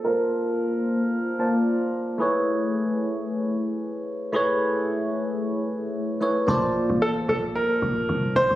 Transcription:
0.04 tine electric piano A#3 F4 C5 F5 A5, grand piano A#4
1.39 tine electric piano A#3 F4 C5 D5 A5
2.18 tine electric piano A3 E4 G#4 B4 C#5
4.32 tine electric piano A3 E4 G#4 B4 C#5
6.21 tine electric piano A3 E4 G#4 B4 C#5
6.47 log drum bass A#1, tine electric piano A#3 F4 C5 D5 A5
6.90 log drum bass A1
7.02 grand piano A4
7.28 log drum bass A#1, grand piano A4
7.55 grand piano A#4
7.82 log drum bass A#1
8.09 log drum bass C2
8.36 log drum bass A#1, grand piano C5
8.51 log drum bass A1

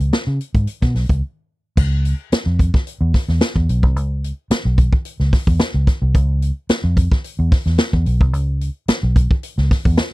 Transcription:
0.00 fingered electric bass C#2, closed hi-hat
0.13 snare
0.27 fingered electric bass C#3
0.41 closed hi-hat
0.54 fingered electric bass G#2, kick, closed hi-hat
0.67 closed hi-hat
0.82 fingered electric bass B2, kick, snare, closed hi-hat
0.95 fingered electric bass B1, snare, open hi-hat
1.09 fingered electric bass C#2, kick, closed hi-hat
1.77 fingered electric bass C#2, kick, crash
2.05 closed hi-hat
2.32 muted fingered electric bass stroke, snare, closed hi-hat
2.46 fingered electric bass F2
2.59 kick, closed hi-hat
2.74 kick, snare
2.87 closed hi-hat
3.01 fingered electric bass E2
3.14 kick, snare, open hi-hat
3.28 fingered electric bass E2, snare
3.41 snare, closed hi-hat
3.56 fingered electric bass E2, kick
3.69 fingered electric bass B1, closed hi-hat
3.83 fingered electric bass C2, kick
3.96 fingered electric bass C#2, closed hi-hat
4.24 closed hi-hat
4.50 muted fingered electric bass stroke, snare, closed hi-hat
4.65 fingered electric bass B1
4.78 kick, closed hi-hat
4.93 kick
5.05 closed hi-hat
5.20 fingered electric bass C#2, snare
5.33 kick, snare, open hi-hat
5.47 fingered electric bass E2, kick
5.60 muted fingered electric bass stroke, snare, closed hi-hat
5.74 fingered electric bass C#2
5.87 kick, snare, closed hi-hat
6.02 fingered electric bass C2
6.15 fingered electric bass C#2, kick, closed hi-hat
6.42 closed hi-hat
6.69 muted fingered electric bass stroke, snare, closed hi-hat
6.84 fingered electric bass F2
6.97 kick, closed hi-hat
7.12 kick, snare
7.24 closed hi-hat
7.39 fingered electric bass E2
7.52 kick, snare, open hi-hat
7.66 fingered electric bass E2, snare
7.78 snare, closed hi-hat
7.93 fingered electric bass E2, kick
8.06 fingered electric bass B1, closed hi-hat
8.21 fingered electric bass C2, kick
8.33 fingered electric bass C#2, closed hi-hat
8.61 closed hi-hat
8.88 muted fingered electric bass stroke, snare, closed hi-hat
9.03 fingered electric bass B1
9.16 kick, closed hi-hat
9.31 kick
9.43 closed hi-hat
9.58 fingered electric bass C#2, snare
9.71 kick, snare, open hi-hat
9.85 fingered electric bass E2, kick
9.97 muted fingered electric bass stroke, snare, closed hi-hat

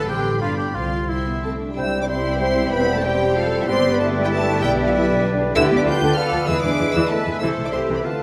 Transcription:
Already playing: harp A3
0.08 double bass section A1, harp A2, cello section C4, viola section G4, oboe G4, violin section G5 C6
0.15 harp E3
0.24 harp C4
0.33 harp E4
0.40 double bass section G1, harp G2, cello section D4, viola section F4, oboe F4, violin section F5 B5
0.48 harp D3
0.57 harp D4, oboe G4, viola section G4, violin section G5
0.65 harp G4
0.74 double bass section C2, harp C3, cello section C4, oboe F4, viola section F4, violin section F5 C6
0.82 harp G3
0.91 harp C4
0.99 harp G4
1.08 cello section C4, oboe E4, viola section E4, harp C5, violin section E5 C6
1.17 harp G4
1.26 cello section B3, harp G5
1.34 harp C6
1.43 french horn section A3, cello section C4, flute section A4, harp C5, violin section A5
1.52 harp G4
1.60 harp C4, cello section D4
1.69 french horn section G3, harp G3, flute section G4, violin section G5
1.76 double bass section C2, harp C3, bassoon G3, viola section G3 C4, french horn section E4, violin section E4 G4 E6, clarinet C5, flute section E5, oboe G5
1.85 harp G3
1.93 harp C4
2.00 french horn section D4, harp G4, flute section D5, violin section D6
2.08 bassoon G3, french horn section C4, cello section E4, flute section C5, clarinet C5, harp C5, oboe G5, violin section C6
2.17 harp G4
2.25 harp G5
2.32 french horn section B3, flute section B4, violin section B5, harp C6
2.39 bassoon G3, french horn section C4, flute section C5, clarinet C5, oboe G5, harp G5, violin section C6
2.57 harp G4
2.64 harp C4
2.71 double bass section E1, harp E2, bassoon G3, french horn section B3, flute section B4, clarinet C5, oboe G5, violin section B5
2.80 harp E3
2.88 harp C4
2.94 french horn section A3, harp G4, flute section A4, violin section A5
3.03 french horn section G3, bassoon G3, flute section G4, cello section G4, harp C5, clarinet C5, violin section G5, oboe G5
3.13 harp G4
3.21 harp G5
3.29 harp C6
3.35 french horn section F3, flute section F4, cello section A4, violin section F5
3.44 harp C5
3.52 harp G4
3.60 french horn section E3, harp C4, flute section E4, violin section E5
3.68 double bass section G1, harp G2, bassoon G3, viola section G3 B3, french horn section C4, violin section D4 G4 C6, cello section G4, clarinet B4, flute section C5, oboe D5
3.77 harp D3
3.86 harp D4
3.92 french horn section B3, harp G4, flute section B4, violin section B5
4.00 french horn section A3, cello section E4, flute section A4, harp B4, violin section A5
4.16 harp G5
4.23 french horn section G3, flute section G4, violin section G5, harp B5
4.31 french horn section A3, flute section A4, harp G5, violin section A5
4.39 harp D5
4.48 harp G4
4.56 harp D4
4.63 double bass section B1, harp B2, french horn section G3, bassoon G3, flute section G4, clarinet B4, oboe D5, violin section G5
4.71 harp B3
4.78 harp D4
4.86 french horn section F3, flute section F4, harp G4, violin section F5
4.93 french horn section E3, flute section E4, harp D5, violin section E5
5.01 harp G4
5.08 harp G5
5.16 harp D6
5.25 cello section D4
5.31 harp D5
5.39 harp G4
5.46 harp D4
5.54 double bass section D2, harp D3, viola section D3, bassoon B3, violin section D4 B4 E6, french horn section E4, cello section G4, clarinet B4, oboe D5, flute section E5
5.62 harp D4
5.69 double bass section D2, viola section D3 B3, harp B3
5.76 french horn section D4, harp B4, flute section D5, violin section D6
5.84 double bass section D2, viola section D3 F3, cello section F4, french horn section G4, harp D5, flute section G5, violin section G6
5.93 harp B4
6.01 double bass section D2, viola section D3, harp B5
6.08 harp D6
6.16 bassoon B3, french horn section F4, cello section A4, clarinet B4, oboe D5, flute section F5, harp B5, violin section F6
6.24 harp B4
6.32 double bass section D2, viola section D3 F3, harp B3
6.40 harp D4
6.47 double bass section E2, harp E3, viola section E3, bassoon G#3, violin section B3 E6, french horn section E4, cello section G#4, clarinet B4, flute section E5, oboe E5
6.55 harp E4
6.61 double bass section E2, viola section E3 G#3, harp B3, french horn section D4, flute section D5, violin section D6
6.70 harp G#4
6.77 double bass section E2, viola section E3, harp B4
6.86 harp G#4
6.93 double bass section E2, viola section E3, french horn section E4, flute section E5, harp G#5, violin section E6
7.01 harp B5
7.09 french horn section A3, flute section A4, cello section B4, harp G#5, violin section A5
7.17 harp B4
7.26 double bass section E2, viola section E3
7.32 french horn section G#3, harp B3, flute section G#4, violin section G#5
7.39 double bass section C2, harp C3, viola section C3 E3, bassoon A3, violin section E4 C5 E6, french horn section E4, cello section A4, clarinet C5, flute section E5, oboe E5
7.49 harp A3
7.57 double bass section C2, viola section E3 A3, harp C4
7.65 french horn section D4, harp E4, flute section D5, violin section D6
7.72 double bass section C2, viola section E3, bassoon A3, french horn section C4, cello section G4, harp A4, clarinet C5, flute section C5, oboe E5, violin section C6
7.80 harp C5
7.89 double bass section C2, viola section C3 E3
7.95 french horn section B3, flute section B4, harp A5, violin section B5
8.03 harp D3, french horn section A3, bassoon B3, violin section D4 B4 A5, cello section F4, flute section A4, clarinet B4, oboe F5
8.12 harp A3
8.19 harp B3

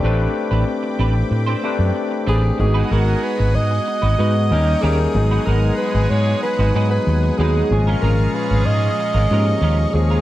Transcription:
0.03 fretless electric bass A1, tine electric piano A3 C4 D4 G4 B4, clean electric guitar C4 D4 G4 B4, analog synth pad C4 G5 B5 D6
0.36 muted clean electric guitar stroke
0.51 fretless electric bass A1, clean electric guitar C4 D4 G4 B4
0.68 muted clean electric guitar stroke
0.83 muted clean electric guitar stroke
0.99 fretless electric bass A1, clean electric guitar C4 D4 G4 B4
1.15 muted clean electric guitar stroke
1.31 fretless electric bass A2, muted clean electric guitar stroke
1.46 clean electric guitar C4 D4 G4 C5
1.62 tine electric piano A3 C4 D4 G4 B4, clean electric guitar C4 D4 G4 C5
1.79 fretless electric bass F#2
1.95 muted clean electric guitar stroke
2.11 muted clean electric guitar stroke
2.27 fretless electric bass A1, clean electric guitar C4 D4 G4 B4, alto saxophone G#4
2.43 muted clean electric guitar stroke
2.58 fretless electric bass G#1, horn section F#3 B3 D#4 F#4, tine electric piano G#3 B3 D#4 F#4 A#4, alto saxophone G#4, analog synth pad G#4 F#5 G#5 D#6, muted clean electric guitar stroke
2.66 tine electric piano G#4
2.74 clean electric guitar G#3 D#4 F#4 B4
2.91 fretless electric bass G#1, clean electric guitar G#3 D#4 F#4 B4, alto saxophone A#4
3.23 alto saxophone B4, muted clean electric guitar stroke
3.39 fretless electric bass G#1, muted clean electric guitar stroke
3.55 fretless electric bass G#2, alto saxophone D#5
3.71 muted clean electric guitar stroke
3.87 muted clean electric guitar stroke
4.02 fretless electric bass G#1, clean electric guitar G#3 D#4 F#4 B4
4.18 fretless electric bass G#2, tine electric piano G#3 B3 D#4 F#4 B4, clean electric guitar G#3 D#4 F#4 B4
4.35 muted clean electric guitar stroke
4.50 fretless electric bass D#2, tine electric piano G3 A#3 C#4 D#4 A#4, horn section A#3 D#4 G4 A#4, analog synth pad A#4 G5 C#6, muted clean electric guitar stroke
4.67 muted clean electric guitar stroke
4.82 fretless electric bass D#2, tine electric piano G3 A#3 C#4 D#4 A#4, clean electric guitar A#3 C#4 G4 A#4, alto saxophone G#4
4.98 muted clean electric guitar stroke
5.14 fretless electric bass G#1, tine electric piano F#3 G#3 B3 D#4 G#4, horn section G#3 B3 D#4 G#4, analog synth pad G#4 F#5 G#5, muted clean electric guitar stroke
5.31 clean electric guitar G#3 D#4 F#4 B4
5.46 fretless electric bass G#1, clean electric guitar G#3 D#4 F#4 B4, alto saxophone A#4
5.62 muted clean electric guitar stroke
5.78 alto saxophone B4, muted clean electric guitar stroke
5.94 fretless electric bass G#1, muted clean electric guitar stroke
6.10 fretless electric bass G#2, alto saxophone C#5
6.27 muted clean electric guitar stroke
6.43 alto saxophone B4, muted clean electric guitar stroke
6.59 fretless electric bass G#1, clean electric guitar G#3 D#4 F#4 B4
6.75 fretless electric bass G#2, tine electric piano F#3 G#3 B3 D#4 G#4, clean electric guitar G#3 D#4 F#4 B4
6.91 alto saxophone B4, muted clean electric guitar stroke
7.07 fretless electric bass D#2, muted clean electric guitar stroke
7.23 muted clean electric guitar stroke
7.38 fretless electric bass D#2, tine electric piano F#3 G#3 B3 D#4 G#4, clean electric guitar G#3 D#4 F#4 B4, alto saxophone G#4
7.56 clean electric guitar G#3 D#4 F#4 B4
7.71 fretless electric bass G#1, tine electric piano A#2 F3 G#3 C#4 G#4, horn section G#3 C#4 F4 G#4, analog synth pad F5 A#5 C#6, muted clean electric guitar stroke
7.87 clean electric guitar G#3 C#4 F4 A#4
8.02 fretless electric bass G#1, clean electric guitar G#3 C#4 F4 A#4, alto saxophone A#4
8.34 alto saxophone B4, muted clean electric guitar stroke
8.51 fretless electric bass G#1, muted clean electric guitar stroke
8.66 fretless electric bass G#2, alto saxophone D#5
8.83 muted clean electric guitar stroke
8.99 muted clean electric guitar stroke
9.14 fretless electric bass G#1, clean electric guitar G#3 C#4 F4 A#4
9.30 fretless electric bass G#2, tine electric piano F3 G#3 A#3 C#4 G4, clean electric guitar G#3 C#4 F4 A#4
9.39 tine electric piano G#4
9.47 muted clean electric guitar stroke
9.61 fretless electric bass D#2, clean electric guitar G#3 C#4 F4 A#4
9.79 muted clean electric guitar stroke
9.94 fretless electric bass D#2, tine electric piano F3 G#3 A#3 C#4 G#4, alto saxophone G#4, muted clean electric guitar stroke
10.10 clean electric guitar G#3 C#4 F4 A#4

